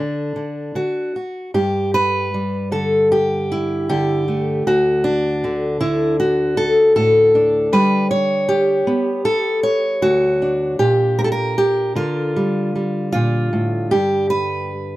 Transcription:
0, 0, Header, 1, 2, 480
1, 0, Start_track
1, 0, Tempo, 786370
1, 941, Time_signature, 4, 2, 24, 8
1, 2375, Tempo, 766284
1, 6215, Tempo, 778210
1, 9264, End_track
2, 0, Start_track
2, 0, Title_t, "Steel-string acoustic guitar"
2, 0, Program_c, 0, 25
2, 0, Note_on_c, 0, 38, 62
2, 0, Note_on_c, 0, 50, 41
2, 0, Note_on_c, 0, 62, 73
2, 212, Note_off_c, 0, 50, 0
2, 219, Note_on_c, 0, 50, 37
2, 408, Note_off_c, 0, 38, 0
2, 453, Note_off_c, 0, 50, 0
2, 459, Note_on_c, 0, 50, 57
2, 463, Note_on_c, 0, 66, 76
2, 700, Note_off_c, 0, 66, 0
2, 705, Note_off_c, 0, 62, 0
2, 707, Note_on_c, 0, 66, 39
2, 895, Note_off_c, 0, 50, 0
2, 916, Note_off_c, 0, 66, 0
2, 941, Note_on_c, 0, 43, 63
2, 943, Note_on_c, 0, 67, 77
2, 1182, Note_off_c, 0, 67, 0
2, 1185, Note_on_c, 0, 71, 90
2, 1429, Note_on_c, 0, 55, 40
2, 1657, Note_on_c, 0, 50, 54
2, 1658, Note_off_c, 0, 71, 0
2, 1661, Note_on_c, 0, 69, 84
2, 1900, Note_off_c, 0, 69, 0
2, 1903, Note_on_c, 0, 67, 84
2, 2146, Note_on_c, 0, 64, 79
2, 2370, Note_off_c, 0, 67, 0
2, 2372, Note_off_c, 0, 50, 0
2, 2377, Note_on_c, 0, 67, 88
2, 2380, Note_on_c, 0, 50, 63
2, 2616, Note_off_c, 0, 64, 0
2, 2619, Note_on_c, 0, 57, 40
2, 2830, Note_off_c, 0, 43, 0
2, 2832, Note_off_c, 0, 50, 0
2, 2860, Note_off_c, 0, 67, 0
2, 2861, Note_off_c, 0, 57, 0
2, 2862, Note_on_c, 0, 38, 69
2, 2863, Note_on_c, 0, 66, 90
2, 2864, Note_off_c, 0, 55, 0
2, 3095, Note_on_c, 0, 62, 88
2, 3345, Note_on_c, 0, 50, 46
2, 3571, Note_off_c, 0, 50, 0
2, 3572, Note_off_c, 0, 66, 0
2, 3574, Note_on_c, 0, 64, 92
2, 3578, Note_on_c, 0, 50, 58
2, 3815, Note_off_c, 0, 64, 0
2, 3819, Note_on_c, 0, 66, 87
2, 4052, Note_off_c, 0, 62, 0
2, 4055, Note_on_c, 0, 69, 95
2, 4289, Note_off_c, 0, 69, 0
2, 4296, Note_on_c, 0, 69, 97
2, 4300, Note_on_c, 0, 45, 65
2, 4538, Note_off_c, 0, 66, 0
2, 4542, Note_on_c, 0, 62, 45
2, 4774, Note_off_c, 0, 45, 0
2, 4777, Note_off_c, 0, 69, 0
2, 4777, Note_on_c, 0, 55, 73
2, 4778, Note_off_c, 0, 38, 0
2, 4779, Note_on_c, 0, 71, 103
2, 5014, Note_off_c, 0, 71, 0
2, 5016, Note_on_c, 0, 73, 99
2, 5035, Note_off_c, 0, 62, 0
2, 5253, Note_on_c, 0, 67, 92
2, 5492, Note_off_c, 0, 50, 0
2, 5494, Note_on_c, 0, 59, 60
2, 5729, Note_off_c, 0, 73, 0
2, 5732, Note_on_c, 0, 69, 95
2, 5969, Note_off_c, 0, 69, 0
2, 5972, Note_on_c, 0, 73, 90
2, 6214, Note_off_c, 0, 67, 0
2, 6214, Note_on_c, 0, 38, 60
2, 6216, Note_on_c, 0, 66, 93
2, 6461, Note_on_c, 0, 62, 41
2, 6664, Note_off_c, 0, 59, 0
2, 6688, Note_off_c, 0, 66, 0
2, 6690, Note_off_c, 0, 73, 0
2, 6690, Note_on_c, 0, 67, 91
2, 6691, Note_off_c, 0, 38, 0
2, 6694, Note_on_c, 0, 46, 68
2, 6933, Note_on_c, 0, 70, 94
2, 6958, Note_off_c, 0, 55, 0
2, 6966, Note_off_c, 0, 70, 0
2, 6969, Note_on_c, 0, 69, 78
2, 7012, Note_off_c, 0, 69, 0
2, 7015, Note_on_c, 0, 70, 92
2, 7168, Note_off_c, 0, 67, 0
2, 7176, Note_on_c, 0, 67, 86
2, 7407, Note_on_c, 0, 50, 51
2, 7410, Note_off_c, 0, 46, 0
2, 7411, Note_off_c, 0, 67, 0
2, 7413, Note_on_c, 0, 65, 93
2, 7647, Note_off_c, 0, 70, 0
2, 7657, Note_off_c, 0, 62, 0
2, 7660, Note_on_c, 0, 55, 50
2, 7894, Note_off_c, 0, 55, 0
2, 7901, Note_on_c, 0, 55, 41
2, 8122, Note_off_c, 0, 65, 0
2, 8129, Note_on_c, 0, 65, 82
2, 8142, Note_on_c, 0, 46, 55
2, 8376, Note_off_c, 0, 46, 0
2, 8378, Note_on_c, 0, 45, 54
2, 8612, Note_off_c, 0, 65, 0
2, 8614, Note_on_c, 0, 67, 92
2, 8615, Note_off_c, 0, 45, 0
2, 8621, Note_on_c, 0, 43, 64
2, 8852, Note_off_c, 0, 67, 0
2, 8854, Note_on_c, 0, 71, 94
2, 9101, Note_off_c, 0, 55, 0
2, 9264, Note_off_c, 0, 43, 0
2, 9264, Note_off_c, 0, 50, 0
2, 9264, Note_off_c, 0, 71, 0
2, 9264, End_track
0, 0, End_of_file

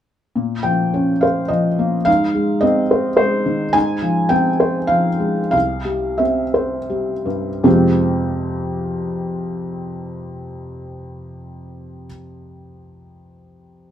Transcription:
0, 0, Header, 1, 2, 480
1, 0, Start_track
1, 0, Key_signature, -4, "minor"
1, 0, Tempo, 582524
1, 289, Time_signature, 3, 2, 24, 8
1, 1245, Tempo, 561798
1, 3645, Tempo, 609756
1, 4605, Tempo, 671141
1, 5085, Tempo, 710059
1, 10293, End_track
2, 0, Start_track
2, 0, Title_t, "Felt piano"
2, 0, Program_c, 0, 0
2, 293, Note_on_c, 0, 46, 51
2, 439, Control_c, 0, 64, 127
2, 519, Note_on_c, 0, 79, 75
2, 529, Note_on_c, 0, 53, 41
2, 773, Note_on_c, 0, 61, 41
2, 914, Note_off_c, 0, 53, 0
2, 995, Note_on_c, 0, 77, 63
2, 1003, Note_off_c, 0, 79, 0
2, 1011, Note_on_c, 0, 72, 47
2, 1151, Note_off_c, 0, 61, 0
2, 1223, Note_on_c, 0, 75, 72
2, 1237, Note_off_c, 0, 77, 0
2, 1237, Note_on_c, 0, 53, 43
2, 1390, Note_off_c, 0, 72, 0
2, 1483, Note_on_c, 0, 58, 45
2, 1623, Note_off_c, 0, 53, 0
2, 1689, Note_off_c, 0, 46, 0
2, 1705, Note_on_c, 0, 77, 89
2, 1710, Note_off_c, 0, 75, 0
2, 1720, Note_on_c, 0, 44, 62
2, 1721, Note_off_c, 0, 58, 0
2, 1738, Control_c, 0, 64, 0
2, 1852, Control_c, 0, 64, 127
2, 1960, Note_on_c, 0, 56, 47
2, 2181, Note_on_c, 0, 75, 83
2, 2196, Note_off_c, 0, 77, 0
2, 2197, Note_on_c, 0, 60, 50
2, 2348, Note_off_c, 0, 56, 0
2, 2440, Note_on_c, 0, 72, 53
2, 2581, Note_off_c, 0, 60, 0
2, 2647, Note_off_c, 0, 72, 0
2, 2659, Note_on_c, 0, 72, 81
2, 2667, Note_off_c, 0, 75, 0
2, 2671, Note_on_c, 0, 56, 55
2, 2909, Note_on_c, 0, 51, 46
2, 3055, Note_off_c, 0, 56, 0
2, 3120, Note_off_c, 0, 44, 0
2, 3140, Note_on_c, 0, 80, 99
2, 3146, Note_off_c, 0, 72, 0
2, 3146, Note_on_c, 0, 44, 68
2, 3152, Note_off_c, 0, 51, 0
2, 3171, Control_c, 0, 64, 0
2, 3327, Control_c, 0, 64, 127
2, 3391, Note_on_c, 0, 53, 50
2, 3620, Note_on_c, 0, 79, 84
2, 3629, Note_on_c, 0, 60, 48
2, 3637, Note_off_c, 0, 80, 0
2, 3779, Note_off_c, 0, 53, 0
2, 3865, Note_on_c, 0, 72, 53
2, 4009, Note_off_c, 0, 60, 0
2, 4081, Note_on_c, 0, 77, 77
2, 4092, Note_on_c, 0, 53, 47
2, 4100, Note_off_c, 0, 79, 0
2, 4250, Note_off_c, 0, 72, 0
2, 4333, Note_on_c, 0, 56, 44
2, 4493, Note_off_c, 0, 53, 0
2, 4569, Note_off_c, 0, 44, 0
2, 4570, Note_off_c, 0, 77, 0
2, 4582, Note_on_c, 0, 77, 77
2, 4594, Note_on_c, 0, 36, 57
2, 4595, Note_off_c, 0, 56, 0
2, 4620, Control_c, 0, 64, 0
2, 4778, Control_c, 0, 64, 127
2, 4826, Note_on_c, 0, 55, 41
2, 5061, Note_on_c, 0, 76, 53
2, 5071, Note_on_c, 0, 60, 43
2, 5074, Note_off_c, 0, 77, 0
2, 5220, Note_off_c, 0, 55, 0
2, 5308, Note_on_c, 0, 72, 44
2, 5460, Note_off_c, 0, 60, 0
2, 5549, Note_on_c, 0, 55, 43
2, 5702, Note_off_c, 0, 72, 0
2, 5791, Note_on_c, 0, 43, 41
2, 5798, Note_off_c, 0, 76, 0
2, 5952, Note_off_c, 0, 55, 0
2, 6025, Note_off_c, 0, 36, 0
2, 6047, Note_off_c, 0, 43, 0
2, 6049, Note_on_c, 0, 41, 63
2, 6049, Note_on_c, 0, 56, 52
2, 6050, Note_on_c, 0, 48, 52
2, 6052, Note_on_c, 0, 60, 57
2, 6055, Note_on_c, 0, 65, 58
2, 6060, Note_on_c, 0, 67, 58
2, 6070, Control_c, 0, 64, 0
2, 6197, Control_c, 0, 64, 127
2, 9038, Note_off_c, 0, 41, 0
2, 9038, Note_off_c, 0, 56, 0
2, 9039, Note_off_c, 0, 48, 0
2, 9041, Note_off_c, 0, 60, 0
2, 9044, Note_off_c, 0, 65, 0
2, 9049, Note_off_c, 0, 67, 0
2, 10293, End_track
0, 0, End_of_file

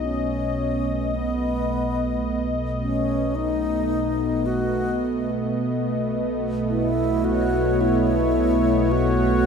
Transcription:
0, 0, Header, 1, 4, 480
1, 0, Start_track
1, 0, Tempo, 1111111
1, 489, Time_signature, 4, 2, 24, 8
1, 4087, End_track
2, 0, Start_track
2, 0, Title_t, "Alto flute"
2, 0, Program_c, 0, 73
2, 18, Note_on_c, 0, 61, 79
2, 498, Note_on_c, 0, 59, 82
2, 505, Note_off_c, 0, 61, 0
2, 1097, Note_off_c, 0, 59, 0
2, 1211, Note_on_c, 0, 61, 75
2, 1449, Note_on_c, 0, 63, 92
2, 1455, Note_off_c, 0, 61, 0
2, 1926, Note_on_c, 0, 66, 81
2, 1933, Note_off_c, 0, 63, 0
2, 2288, Note_off_c, 0, 66, 0
2, 2890, Note_on_c, 0, 64, 78
2, 3129, Note_on_c, 0, 66, 89
2, 3136, Note_off_c, 0, 64, 0
2, 3373, Note_on_c, 0, 64, 82
2, 3379, Note_off_c, 0, 66, 0
2, 3852, Note_on_c, 0, 66, 93
2, 3858, Note_off_c, 0, 64, 0
2, 4087, Note_off_c, 0, 66, 0
2, 4087, End_track
3, 0, Start_track
3, 0, Title_t, "Analog synth pad"
3, 0, Program_c, 1, 89
3, 0, Note_on_c, 1, 47, 76
3, 0, Note_on_c, 1, 57, 69
3, 0, Note_on_c, 1, 59, 66
3, 0, Note_on_c, 1, 66, 88
3, 0, Note_on_c, 1, 75, 94
3, 109, Note_off_c, 1, 66, 0
3, 3081, Note_on_c, 1, 73, 61
3, 3943, Note_off_c, 1, 75, 0
3, 4087, Note_off_c, 1, 47, 0
3, 4087, Note_off_c, 1, 57, 0
3, 4087, Note_off_c, 1, 59, 0
3, 4087, Note_off_c, 1, 73, 0
3, 4087, End_track
4, 0, Start_track
4, 0, Title_t, "Sub bass"
4, 0, Program_c, 2, 38
4, 0, Note_on_c, 2, 35, 77
4, 2383, Note_off_c, 2, 35, 0
4, 2406, Note_on_c, 2, 35, 80
4, 4087, Note_off_c, 2, 35, 0
4, 4087, End_track
0, 0, End_of_file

